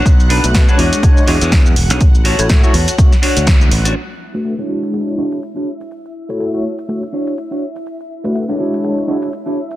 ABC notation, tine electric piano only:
X:1
M:4/4
L:1/16
Q:"Swing 16ths" 1/4=123
K:Emix
V:1 name="Tine electric piano"
z3 [A,DFB] [A,DFB] [G,DFc]3 [G,DFc]2 [G,DFc] z4 z | z3 [A,EFc] [A,EFc] [A,EFc] z2 [A,DFc] z6 z | z3 [A,DFB] [A,DFB] [G,DEFc]3 [G,DEFc]2 [G,DEFc] z4 z | z3 [A,EFc] [A,EFc] [A,EFc] z2 [A,DFc] z6 z |
z3 [A,DFB] [A,DFB] [G,DEFc]3 [G,DEFc]2 [G,DEFc] z4 z |]